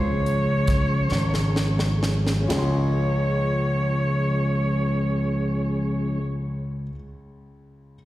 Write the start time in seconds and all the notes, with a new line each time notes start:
Already playing: C#2 C#3 F3 G#3 C#4 F4 G#4 C#5 C6
0.26 closed hi-hat
0.67 kick, snare, closed hi-hat
1.11 G#1, snare
1.34 snare
1.56 snare
1.79 snare
2.03 snare
2.27 snare
2.42 C#4
2.48 C#2 F3 G#3 C#4 F4 G#4 C#5, snare, ride bell
2.53 G#4
2.58 C6